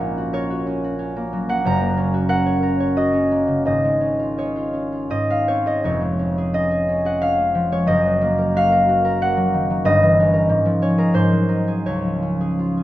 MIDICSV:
0, 0, Header, 1, 2, 480
1, 0, Start_track
1, 0, Key_signature, -5, "major"
1, 0, Tempo, 655738
1, 1214, Time_signature, 3, 2, 24, 8
1, 2178, Tempo, 710900
1, 4578, Tempo, 665188
1, 6498, Tempo, 649351
1, 7938, Tempo, 723764
1, 9061, End_track
2, 0, Start_track
2, 0, Title_t, "Harp"
2, 0, Program_c, 0, 46
2, 0, Note_on_c, 0, 34, 60
2, 0, Note_on_c, 0, 46, 69
2, 0, Note_on_c, 0, 58, 51
2, 0, Note_on_c, 0, 73, 89
2, 0, Note_on_c, 0, 78, 92
2, 1, Note_on_c, 0, 61, 58
2, 129, Note_on_c, 0, 66, 54
2, 235, Note_off_c, 0, 73, 0
2, 242, Note_on_c, 0, 70, 61
2, 246, Note_on_c, 0, 73, 98
2, 358, Note_off_c, 0, 66, 0
2, 367, Note_on_c, 0, 66, 62
2, 479, Note_off_c, 0, 61, 0
2, 488, Note_on_c, 0, 61, 57
2, 607, Note_off_c, 0, 66, 0
2, 616, Note_on_c, 0, 66, 61
2, 715, Note_off_c, 0, 61, 0
2, 724, Note_on_c, 0, 61, 61
2, 843, Note_off_c, 0, 58, 0
2, 851, Note_on_c, 0, 58, 63
2, 972, Note_on_c, 0, 54, 63
2, 1082, Note_off_c, 0, 78, 0
2, 1083, Note_off_c, 0, 58, 0
2, 1089, Note_on_c, 0, 58, 64
2, 1094, Note_on_c, 0, 78, 106
2, 1207, Note_on_c, 0, 30, 77
2, 1213, Note_on_c, 0, 42, 72
2, 1215, Note_off_c, 0, 34, 0
2, 1219, Note_on_c, 0, 82, 127
2, 1221, Note_off_c, 0, 46, 0
2, 1294, Note_off_c, 0, 78, 0
2, 1314, Note_off_c, 0, 58, 0
2, 1323, Note_on_c, 0, 58, 65
2, 1435, Note_off_c, 0, 61, 0
2, 1444, Note_on_c, 0, 61, 67
2, 1556, Note_off_c, 0, 66, 0
2, 1565, Note_on_c, 0, 66, 64
2, 1664, Note_off_c, 0, 70, 0
2, 1673, Note_on_c, 0, 70, 72
2, 1677, Note_on_c, 0, 78, 122
2, 1793, Note_off_c, 0, 73, 0
2, 1802, Note_on_c, 0, 73, 70
2, 1913, Note_off_c, 0, 70, 0
2, 1922, Note_on_c, 0, 70, 66
2, 2042, Note_off_c, 0, 73, 0
2, 2051, Note_on_c, 0, 73, 67
2, 2161, Note_off_c, 0, 66, 0
2, 2167, Note_on_c, 0, 66, 64
2, 2173, Note_on_c, 0, 75, 110
2, 2278, Note_off_c, 0, 61, 0
2, 2286, Note_on_c, 0, 61, 61
2, 2400, Note_off_c, 0, 58, 0
2, 2408, Note_on_c, 0, 58, 63
2, 2516, Note_on_c, 0, 49, 53
2, 2633, Note_off_c, 0, 75, 0
2, 2635, Note_on_c, 0, 32, 64
2, 2638, Note_on_c, 0, 44, 63
2, 2643, Note_on_c, 0, 75, 90
2, 2658, Note_off_c, 0, 78, 0
2, 2659, Note_off_c, 0, 49, 0
2, 2659, Note_off_c, 0, 70, 0
2, 2660, Note_off_c, 0, 66, 0
2, 2661, Note_off_c, 0, 30, 0
2, 2662, Note_off_c, 0, 54, 0
2, 2664, Note_off_c, 0, 42, 0
2, 2664, Note_off_c, 0, 58, 0
2, 2666, Note_off_c, 0, 82, 0
2, 2765, Note_on_c, 0, 56, 53
2, 2868, Note_off_c, 0, 61, 0
2, 2876, Note_on_c, 0, 61, 52
2, 3000, Note_on_c, 0, 65, 52
2, 3120, Note_off_c, 0, 73, 0
2, 3124, Note_on_c, 0, 68, 57
2, 3131, Note_on_c, 0, 73, 80
2, 3239, Note_off_c, 0, 65, 0
2, 3247, Note_on_c, 0, 65, 52
2, 3356, Note_off_c, 0, 61, 0
2, 3364, Note_on_c, 0, 61, 50
2, 3484, Note_off_c, 0, 65, 0
2, 3492, Note_on_c, 0, 65, 51
2, 3607, Note_off_c, 0, 44, 0
2, 3607, Note_off_c, 0, 75, 0
2, 3613, Note_on_c, 0, 44, 65
2, 3617, Note_on_c, 0, 75, 87
2, 3634, Note_off_c, 0, 32, 0
2, 3635, Note_off_c, 0, 61, 0
2, 3637, Note_off_c, 0, 65, 0
2, 3639, Note_off_c, 0, 73, 0
2, 3736, Note_off_c, 0, 56, 0
2, 3744, Note_on_c, 0, 56, 50
2, 3750, Note_on_c, 0, 77, 84
2, 3827, Note_off_c, 0, 75, 0
2, 3867, Note_on_c, 0, 60, 55
2, 3870, Note_on_c, 0, 73, 91
2, 3956, Note_off_c, 0, 77, 0
2, 3980, Note_off_c, 0, 68, 0
2, 3988, Note_on_c, 0, 68, 55
2, 3996, Note_on_c, 0, 75, 85
2, 4074, Note_off_c, 0, 73, 0
2, 4111, Note_on_c, 0, 29, 60
2, 4117, Note_on_c, 0, 41, 61
2, 4119, Note_on_c, 0, 73, 89
2, 4125, Note_off_c, 0, 44, 0
2, 4127, Note_off_c, 0, 60, 0
2, 4195, Note_off_c, 0, 75, 0
2, 4219, Note_off_c, 0, 56, 0
2, 4227, Note_on_c, 0, 56, 51
2, 4349, Note_on_c, 0, 61, 52
2, 4467, Note_off_c, 0, 68, 0
2, 4475, Note_on_c, 0, 68, 51
2, 4573, Note_off_c, 0, 61, 0
2, 4581, Note_on_c, 0, 61, 59
2, 4586, Note_on_c, 0, 75, 96
2, 4701, Note_off_c, 0, 68, 0
2, 4709, Note_on_c, 0, 68, 58
2, 4826, Note_off_c, 0, 61, 0
2, 4835, Note_on_c, 0, 61, 57
2, 4945, Note_off_c, 0, 68, 0
2, 4953, Note_on_c, 0, 68, 56
2, 4961, Note_on_c, 0, 78, 88
2, 5067, Note_off_c, 0, 61, 0
2, 5073, Note_on_c, 0, 77, 100
2, 5076, Note_on_c, 0, 61, 60
2, 5152, Note_off_c, 0, 78, 0
2, 5186, Note_off_c, 0, 56, 0
2, 5193, Note_off_c, 0, 75, 0
2, 5195, Note_on_c, 0, 56, 53
2, 5312, Note_on_c, 0, 53, 61
2, 5424, Note_off_c, 0, 56, 0
2, 5430, Note_off_c, 0, 73, 0
2, 5433, Note_on_c, 0, 56, 59
2, 5439, Note_on_c, 0, 73, 93
2, 5538, Note_on_c, 0, 30, 68
2, 5547, Note_on_c, 0, 75, 108
2, 5551, Note_on_c, 0, 42, 78
2, 5557, Note_off_c, 0, 29, 0
2, 5561, Note_off_c, 0, 41, 0
2, 5561, Note_off_c, 0, 68, 0
2, 5561, Note_off_c, 0, 77, 0
2, 5563, Note_off_c, 0, 53, 0
2, 5563, Note_off_c, 0, 61, 0
2, 5564, Note_off_c, 0, 56, 0
2, 5632, Note_off_c, 0, 73, 0
2, 5680, Note_on_c, 0, 54, 53
2, 5793, Note_on_c, 0, 58, 61
2, 5913, Note_on_c, 0, 70, 60
2, 6043, Note_on_c, 0, 66, 71
2, 6048, Note_on_c, 0, 77, 118
2, 6149, Note_off_c, 0, 70, 0
2, 6158, Note_on_c, 0, 70, 67
2, 6269, Note_off_c, 0, 66, 0
2, 6278, Note_on_c, 0, 66, 66
2, 6385, Note_off_c, 0, 70, 0
2, 6394, Note_on_c, 0, 70, 77
2, 6508, Note_off_c, 0, 58, 0
2, 6515, Note_on_c, 0, 58, 68
2, 6519, Note_on_c, 0, 78, 114
2, 6620, Note_off_c, 0, 54, 0
2, 6629, Note_on_c, 0, 54, 73
2, 6756, Note_on_c, 0, 51, 65
2, 6849, Note_off_c, 0, 77, 0
2, 6868, Note_off_c, 0, 54, 0
2, 6877, Note_on_c, 0, 54, 65
2, 6977, Note_off_c, 0, 75, 0
2, 6983, Note_on_c, 0, 31, 74
2, 6985, Note_on_c, 0, 43, 90
2, 6988, Note_on_c, 0, 75, 127
2, 6998, Note_off_c, 0, 30, 0
2, 7005, Note_off_c, 0, 42, 0
2, 7006, Note_off_c, 0, 51, 0
2, 7006, Note_off_c, 0, 54, 0
2, 7007, Note_off_c, 0, 66, 0
2, 7007, Note_off_c, 0, 78, 0
2, 7116, Note_on_c, 0, 52, 69
2, 7241, Note_on_c, 0, 61, 67
2, 7334, Note_off_c, 0, 70, 0
2, 7343, Note_on_c, 0, 70, 71
2, 7460, Note_on_c, 0, 44, 84
2, 7470, Note_off_c, 0, 31, 0
2, 7471, Note_off_c, 0, 43, 0
2, 7473, Note_off_c, 0, 70, 0
2, 7477, Note_off_c, 0, 52, 0
2, 7477, Note_off_c, 0, 58, 0
2, 7578, Note_on_c, 0, 53, 66
2, 7692, Note_off_c, 0, 61, 0
2, 7701, Note_on_c, 0, 61, 68
2, 7705, Note_on_c, 0, 73, 93
2, 7819, Note_on_c, 0, 68, 64
2, 7824, Note_on_c, 0, 70, 97
2, 7932, Note_off_c, 0, 44, 0
2, 7938, Note_on_c, 0, 44, 81
2, 7941, Note_on_c, 0, 72, 97
2, 7961, Note_off_c, 0, 53, 0
2, 7962, Note_off_c, 0, 61, 0
2, 7964, Note_off_c, 0, 73, 0
2, 8024, Note_off_c, 0, 70, 0
2, 8058, Note_on_c, 0, 54, 57
2, 8168, Note_on_c, 0, 63, 57
2, 8198, Note_off_c, 0, 75, 0
2, 8286, Note_off_c, 0, 68, 0
2, 8294, Note_on_c, 0, 68, 58
2, 8417, Note_on_c, 0, 73, 83
2, 8420, Note_on_c, 0, 37, 62
2, 8427, Note_off_c, 0, 63, 0
2, 8429, Note_off_c, 0, 72, 0
2, 8430, Note_off_c, 0, 44, 0
2, 8431, Note_off_c, 0, 54, 0
2, 8532, Note_on_c, 0, 53, 49
2, 8657, Note_on_c, 0, 61, 51
2, 8770, Note_off_c, 0, 68, 0
2, 8778, Note_on_c, 0, 68, 50
2, 8899, Note_on_c, 0, 65, 54
2, 9013, Note_off_c, 0, 68, 0
2, 9021, Note_on_c, 0, 68, 47
2, 9061, Note_off_c, 0, 37, 0
2, 9061, Note_off_c, 0, 53, 0
2, 9061, Note_off_c, 0, 61, 0
2, 9061, Note_off_c, 0, 65, 0
2, 9061, Note_off_c, 0, 68, 0
2, 9061, Note_off_c, 0, 73, 0
2, 9061, End_track
0, 0, End_of_file